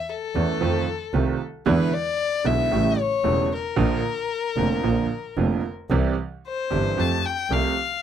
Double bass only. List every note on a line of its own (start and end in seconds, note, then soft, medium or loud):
0.35 0.57 E2 medium
0.61 0.83 F2 medium
1.13 1.36 C2 medium
1.67 1.89 E2 medium
2.45 2.67 B1 medium
2.72 2.94 A1 medium
3.25 3.47 E1 medium
3.78 4.00 A#1 medium
4.57 4.79 F1 medium
4.84 5.06 A#1 medium
5.37 5.60 F1 medium
5.90 6.13 C2 medium
6.71 6.94 G1 medium
6.97 7.20 F2 medium
7.50 7.72 C2 medium